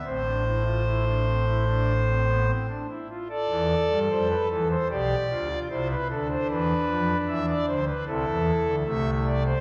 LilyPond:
<<
  \new Staff \with { instrumentName = "Pipe organ" } { \time 4/4 \key a \minor \tempo 4 = 75 << { c''2.~ c''8 r8 | d''4 c''16 b'16 a'16 c''16 d''4 c''16 b'16 a'16 c''16 | b'4 e''16 d''16 c''16 b'16 a'4 e''8 d''16 c''16 | } \\ { c'16 d'16 e'16 f'16 e'16 d'16 c'16 e'16 d'8 c'16 b16 c'16 d'16 e'16 f'16 | a'2 g'8 f'16 f'16 e'8 d'8~ | d'2 e'4 a4 | } >> }
  \new Staff \with { instrumentName = "Pipe organ" } { \clef bass \time 4/4 \key a \minor <a,, a,>2.~ <a,, a,>8 r8 | r16 <e, e>8 <g, g>16 <f, f>8 <e, e>8 <b,, b,>8 <d, d>8 <c, c>8 <d, d>8 | <e, e>8 <f, f>8 <e, e>8 <d, d>8 <c, c>16 <e, e>8 <d, d>16 <c, c>4 | }
>>